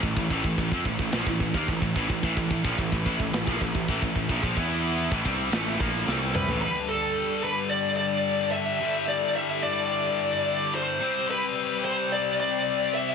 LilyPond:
<<
  \new Staff \with { instrumentName = "Lead electric guitar" } { \time 4/4 \key g \mixolydian \tempo 4 = 109 r1 | r1 | r2. r8 b'8 | b'8 a'4 b'8 d''8 d''4 e''8~ |
e''8 d''8 e''8 d''2 c''8~ | c''8 b'4 c''8 d''8 d''4 e''8 | }
  \new Staff \with { instrumentName = "Analog synth pad" } { \time 4/4 \key g \mixolydian << { r1 | <a b'>1~ | <a b'>16 <e e'>4 <a b'>2~ <a b'>8. | <g a'>1~ |
<g a'>1 | <c' d''>1 | } \\ { r1 | e'1~ | e'16 b4 r2 r8. | d'1 |
e'1 | g'1 | } >> }
  \new Staff \with { instrumentName = "Distorted electric guitar" } { \clef bass \time 4/4 \key g \mixolydian <a, e>16 <a, e>16 <a, e>16 <a, e>16 <a, e>16 <f c'>16 <a, e>16 <a, e>16 <bes, f>16 <a, e>16 <a, e>16 <dis bes>16 <a, e>16 <a, e>16 <a, e>16 <a, e>16 | <a, e>16 <a, e>16 <a, e>16 <bes, f>16 <a, e>16 <a, e>16 <a, e>16 <a, e>16 <a, e>16 <bes, f>16 <a, e>16 <a, e>16 <a, e>16 <a, e>16 <a, e>16 <bes, f>16 | <bes, f>16 <e b e'>4 <a, e>16 <c g c'>8 <a, e a>8 <bes, f bes>8 <c g c'>8. <a, e>16 | <g, d g>1 |
<g, d g>1 | <c g c'>1 | }
  \new Staff \with { instrumentName = "Distorted electric guitar" } { \clef bass \time 4/4 \key g \mixolydian <a, e>16 <a, e>16 <a, e>16 <a, e>16 <a, e>16 <f c'>16 <a, e>16 <a, e>16 <bes, f>16 <a, e>16 <a, e>16 <dis bes>16 <a, e>16 <a, e>16 <a, e>16 <a, e>16 | <a, e>16 <a, e>16 <a, e>16 <bes, f>16 <a, e>16 <a, e>16 <a, e>16 <a, e>16 <a, e>16 <bes, f>16 <a, e>16 <a, e>16 <a, e>16 <a, e>16 <a, e>16 <bes, f>16 | <bes, f>16 <e b e'>4 <a, e>16 <c g c'>8 <a, e a>8 <bes, f bes>8 <c g c'>8. <a, e>16 | r1 |
r1 | r1 | }
  \new Staff \with { instrumentName = "Picked electric bass" } { \clef bass \time 4/4 \key g \mixolydian a,,16 a,,16 a,,16 a,,16 a,,16 f,16 a,,16 a,,16 bes,,16 a,,16 a,,16 dis,16 a,,16 a,,16 a,,16 a,,16 | a,,16 a,,16 a,,16 bes,,16 a,,16 a,,16 a,,16 a,,16 a,,16 bes,,16 a,,16 a,,16 a,,16 a,,16 a,,16 bes,,16 | bes,,16 e,4 a,,16 c,8 a,,8 bes,,8 c,8. a,,16 | r1 |
r1 | r1 | }
  \new DrumStaff \with { instrumentName = "Drums" } \drummode { \time 4/4 <cymc bd>16 bd16 bd16 bd16 <cymc bd>16 bd16 bd16 bd16 <cymc sn>16 bd16 bd16 bd16 <cymc bd>16 bd16 bd16 bd16 | <cymc bd>16 bd16 bd16 bd16 <cymc bd>16 bd16 bd16 bd16 <cymc sn>16 bd16 bd16 bd16 <cymc bd>16 bd16 bd16 bd16 | <cymc bd>16 bd8. cymc16 bd16 bd8 <cymc sn>8 bd8 sn8 toml16 tomfh16 | r4 r4 r4 r4 |
r4 r4 r4 r4 | r4 r4 r4 r4 | }
>>